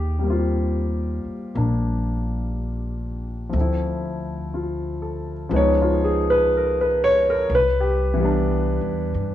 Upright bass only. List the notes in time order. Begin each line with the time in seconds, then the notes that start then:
Already playing: D#2
1.25 muted upright bass stroke
1.55 A#1
3.53 D2
5.51 C#2
7.49 C2
8.81 E2
9.15 G2